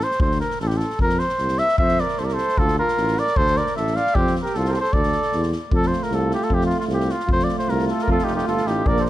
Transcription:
0.01 0.20 C5 medium
0.01 snare soft
0.11 snare soft
0.20 0.42 D2 medium
0.20 0.39 C5 medium
0.20 kick loud
0.31 snare soft
0.40 0.59 A#4 medium
0.40 snare soft
0.50 snare soft
0.60 0.82 A1 loud
0.60 0.69 A4 medium
0.60 snare soft
0.67 0.78 G4 medium
0.67 snare soft
0.77 1.00 A4 medium
0.77 snare soft
0.90 snare soft
0.99 1.22 F2 loud
0.99 1.20 A#4 loud
0.99 kick medium
1.09 snare soft
1.19 1.60 C5 medium
1.19 snare soft
1.29 snare soft
1.38 1.61 C2 medium
1.38 snare soft
1.48 snare soft
1.58 1.78 E5 loud
1.58 snare soft
1.68 snare soft
1.78 2.01 F2 loud
1.78 2.02 C5 medium
1.78 2.01 E5 loud
1.78 kick loud
1.88 snare soft
1.98 2.21 A#4 medium
1.98 2.20 D5 loud
1.98 snare soft
2.08 snare soft
2.17 2.41 C2 medium
2.17 2.28 A4 medium
2.17 2.26 C5 medium
2.17 snare soft
2.24 2.35 A#4 medium
2.24 2.34 D5 medium
2.28 snare soft
2.33 2.60 A4 medium
2.33 2.60 C5 loud
2.38 snare soft
2.49 snare soft
2.57 2.80 D2 medium
2.57 2.78 F4 medium
2.57 2.78 A4 loud
2.57 kick medium
2.68 snare soft
2.78 3.19 F4 medium
2.78 3.20 A#4 loud
2.88 snare soft
2.97 3.19 A1 medium
2.97 snare soft
3.07 snare soft
3.17 3.38 A#4 medium
3.17 3.38 D5 loud
3.17 snare soft
3.27 snare soft
3.36 3.59 D2 loud
3.36 3.58 A4 medium
3.36 3.58 C5 loud
3.36 kick loud
3.47 snare soft
3.56 3.76 A#4 medium
3.56 3.75 D5 loud
3.56 snare soft
3.66 snare soft
3.76 3.98 A1 medium
3.76 3.96 A4 medium
3.76 3.97 E5 medium
3.76 snare soft
3.87 snare soft
3.95 4.19 D5 medium
3.95 4.16 F5 loud
3.95 snare soft
4.07 snare soft
4.15 4.37 F2 loud
4.15 4.36 C4 medium
4.15 4.35 G4 loud
4.15 kick medium
4.27 snare soft
4.36 snare soft
4.42 4.59 G4 medium
4.42 4.56 A#4 medium
4.42 snare soft
4.54 4.77 C2 medium
4.54 4.68 F4 medium
4.54 4.67 A4 medium
4.54 snare soft
4.65 4.71 C5 medium
4.65 snare soft
4.69 4.75 G4 medium
4.69 4.73 A4 medium
4.69 4.75 A#4 medium
4.73 4.81 A4 medium
4.73 4.80 C5 loud
4.73 snare soft
4.81 4.93 A4 medium
4.81 4.94 C5 loud
4.81 snare soft
4.93 5.16 D2 medium
4.93 5.52 A4 loud
4.93 5.52 D5 loud
4.93 kick loud
5.03 snare soft
5.12 snare soft
5.22 snare soft
5.32 5.55 E2 medium
5.32 snare soft
5.43 snare soft
5.52 snare soft
5.71 5.93 F2 loud
5.71 7.24 A3 medium
5.71 7.25 F4 medium
5.71 kick loud
5.75 5.89 A4 loud
5.82 snare soft
5.87 6.04 C5 medium
5.93 snare soft
6.03 6.16 A#4 medium
6.03 snare soft
6.11 6.33 C2 loud
6.11 6.32 A4 medium
6.11 snare soft
6.31 6.45 G4 medium
6.31 snare soft
6.42 6.55 A4 medium
6.42 snare soft
6.50 6.72 F2 loud
6.50 6.65 G4 loud
6.50 kick medium
6.61 snare soft
6.66 6.77 F4 medium
6.66 snare soft
6.79 6.85 F4 medium
6.79 snare soft
6.88 7.10 C2 loud
6.88 snare soft
6.94 7.13 G4 medium
7.00 snare soft
7.09 7.30 F4 medium
7.09 snare soft
7.20 snare soft
7.27 7.49 F2 medium
7.27 8.86 A3 medium
7.27 8.87 F4 medium
7.27 kick loud
7.32 7.45 C5 loud
7.39 snare soft
7.44 7.56 D5 medium
7.48 snare soft
7.58 7.71 C5 medium
7.58 snare soft
7.68 7.90 C2 loud
7.68 7.87 A#4 medium
7.68 snare soft
7.78 snare soft
7.87 8.04 A4 loud
7.87 7.92 A#4 medium
7.87 snare soft
7.99 8.10 A#4 medium
7.99 snare soft
8.08 8.18 F2 loud
8.08 8.25 F4 loud
8.08 kick medium
8.12 8.25 A4 medium
8.19 snare soft
8.24 8.44 F1 medium
8.24 8.35 D#4 medium
8.24 8.35 G4 medium
8.24 snare soft
8.35 8.46 D#4 medium
8.35 8.46 G4 medium
8.35 snare soft
8.46 8.64 G1 medium
8.46 8.69 F4 medium
8.46 8.68 A4 medium
8.46 snare soft
8.57 snare soft
8.65 8.83 A1 medium
8.65 8.89 D#4 medium
8.65 8.89 G4 medium
8.65 snare soft
8.85 9.07 A#1 medium
8.85 9.10 A#3 medium
8.85 9.10 D4 medium
8.85 9.01 A#4 medium
8.85 9.02 D5 loud
8.85 kick loud
8.96 9.06 A4 medium
8.96 snare soft
9.00 9.05 C5 medium
9.00 9.08 D5 medium
9.04 9.09 A#4 medium
9.04 9.10 C5 medium
9.04 snare soft

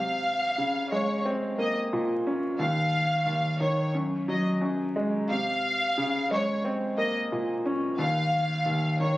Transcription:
0.00 1.93 C3 loud
0.00 0.88 F5 loud
0.58 2.60 C#3 medium
0.91 2.60 G#3 medium
0.91 1.22 C#5 medium
1.25 2.60 C4 medium
1.58 2.60 A#3 medium
1.58 1.76 D#5 medium
1.93 2.60 A#2 medium
2.27 2.60 C#4 medium
2.59 3.25 D#2 loud
2.59 3.57 F5 medium
3.26 3.94 D#2 medium
3.61 3.95 D#3 medium
3.61 3.91 C#5 medium
3.95 4.60 F#2 medium
4.28 5.30 F#3 medium
4.28 4.46 D#5 medium
4.61 5.29 F#2 medium
4.96 5.30 G#3 medium
5.30 7.32 C3 medium
5.30 6.27 F5 loud
5.97 7.99 C#3 medium
6.31 7.99 G#3 medium
6.31 6.61 C#5 medium
6.65 7.99 C4 medium
6.98 7.99 A#3 medium
6.98 7.15 D#5 medium
7.32 7.99 A#2 medium
7.66 7.99 C#4 medium
7.98 8.64 D#2 loud
7.98 8.96 F5 loud
8.66 9.18 D#2 medium
9.00 9.18 D#3 medium
9.00 9.18 C#5 medium

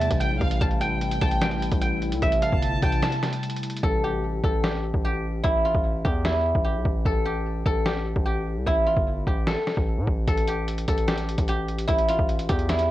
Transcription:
0.00 0.57 C3 medium
0.00 3.79 G3 medium
0.00 3.79 A3 medium
0.00 0.57 E4 medium
0.00 1.53 E5 loud
0.00 0.20 G5 medium
0.00 0.17 A5 medium
0.00 closed hi-hat medium
0.11 0.32 A1 loud
0.11 kick loud
0.11 closed hi-hat medium
0.20 0.81 G5 medium
0.20 0.40 G5 medium
0.20 closed hi-hat medium
0.31 0.40 B1 loud
0.41 0.60 A1 loud
0.41 0.60 F5 medium
0.41 kick loud
0.41 closed hi-hat soft
0.51 closed hi-hat medium
0.61 1.19 A1 loud
0.61 3.80 C3 medium
0.61 3.80 E4 medium
0.61 1.21 A5 loud
0.61 kick loud
0.61 closed hi-hat medium
0.71 closed hi-hat medium
0.81 1.41 G5 medium
0.81 2.18 G5 loud
0.81 closed hi-hat medium
1.01 closed hi-hat medium
1.11 closed hi-hat medium
1.21 1.70 A1 loud
1.21 2.66 A5 loud
1.21 kick loud
1.21 closed hi-hat medium
1.31 closed hi-hat medium
1.41 1.81 G5 medium
1.41 snare loud
1.41 closed hi-hat medium
1.51 closed hi-hat medium
1.62 closed hi-hat medium
1.72 2.14 A1 loud
1.72 kick loud
1.72 closed hi-hat medium
1.82 2.83 G5 medium
1.82 closed hi-hat medium
2.02 closed hi-hat soft
2.12 2.22 C2 loud
2.12 closed hi-hat medium
2.22 2.51 A1 loud
2.22 2.48 E5 loud
2.22 kick loud
2.22 closed hi-hat medium
2.32 closed hi-hat medium
2.42 4.09 F5 medium
2.42 3.39 A5 loud
2.42 closed hi-hat medium
2.52 2.81 G1 loud
2.52 kick loud
2.62 closed hi-hat medium
2.82 3.02 A1 loud
2.82 4.38 G5 medium
2.82 kick loud
2.82 closed hi-hat medium
2.92 closed hi-hat medium
3.02 4.48 A5 medium
3.02 snare loud
3.02 closed hi-hat medium
3.12 closed hi-hat medium
3.23 snare medium
3.23 closed hi-hat medium
3.33 closed hi-hat medium
3.43 closed hi-hat medium
3.50 closed hi-hat medium
3.56 closed hi-hat medium
3.63 closed hi-hat medium
3.70 closed hi-hat medium
3.77 closed hi-hat medium
3.83 4.41 A1 loud
3.83 4.43 A4 medium
3.83 kick loud
4.04 4.63 G4 medium
4.44 4.92 A1 loud
4.44 6.63 A4 medium
4.44 kick loud
4.64 5.04 G4 medium
4.64 snare loud
4.94 5.42 A1 loud
4.94 kick loud
5.05 6.04 G4 medium
5.43 5.73 A1 loud
5.43 5.71 E4 loud
5.43 kick loud
5.65 6.31 F4 medium
5.75 6.04 A1 loud
5.75 kick loud
6.05 6.53 E2 loud
6.05 6.64 G4 medium
6.05 kick loud
6.25 8.66 E4 medium
6.25 snare loud
6.55 6.77 A1 loud
6.55 kick loud
6.64 7.25 G4 medium
6.75 6.85 B1 loud
6.85 7.05 A1 loud
6.85 kick loud
7.05 7.63 A1 loud
7.05 7.65 A4 loud
7.05 kick loud
7.25 7.85 G4 medium
7.66 8.14 A1 loud
7.66 9.47 A4 loud
7.66 kick loud
7.86 8.25 G4 medium
7.86 snare loud
8.16 8.58 A1 loud
8.16 kick loud
8.26 9.27 G4 medium
8.56 8.66 C2 loud
8.66 8.95 A1 loud
8.66 8.93 E4 loud
8.66 kick loud
8.87 11.39 F4 medium
8.97 9.26 G1 loud
8.97 kick loud
9.27 9.56 A1 loud
9.27 10.48 G4 medium
9.27 kick loud
9.47 10.27 A4 medium
9.47 snare loud
9.67 snare medium
9.77 9.99 A1 loud
9.77 kick loud
9.97 10.07 A2 loud
10.07 10.27 A1 loud
10.07 kick loud
10.27 10.86 A1 loud
10.27 10.88 A4 medium
10.27 kick loud
10.27 closed hi-hat medium
10.37 closed hi-hat medium
10.47 11.07 G4 medium
10.47 closed hi-hat medium
10.68 closed hi-hat medium
10.78 closed hi-hat medium
10.88 11.36 A1 loud
10.88 12.91 A4 medium
10.88 kick loud
10.88 closed hi-hat medium
10.98 closed hi-hat medium
11.08 11.48 G4 medium
11.08 snare loud
11.08 closed hi-hat medium
11.18 closed hi-hat medium
11.29 closed hi-hat medium
11.38 11.87 A1 loud
11.38 kick loud
11.38 closed hi-hat medium
11.48 12.49 G4 medium
11.48 closed hi-hat medium
11.69 closed hi-hat soft
11.79 closed hi-hat medium
11.88 12.18 A1 loud
11.88 12.15 E4 loud
11.88 kick loud
11.88 closed hi-hat medium
11.99 closed hi-hat medium
12.09 12.75 F4 medium
12.09 closed hi-hat medium
12.19 12.48 A1 loud
12.19 kick loud
12.29 closed hi-hat medium
12.39 closed hi-hat medium
12.49 12.91 E2 loud
12.49 12.91 G4 medium
12.49 kick loud
12.49 closed hi-hat medium
12.59 closed hi-hat medium
12.69 12.91 E4 medium
12.69 snare loud
12.69 closed hi-hat medium
12.79 closed hi-hat medium

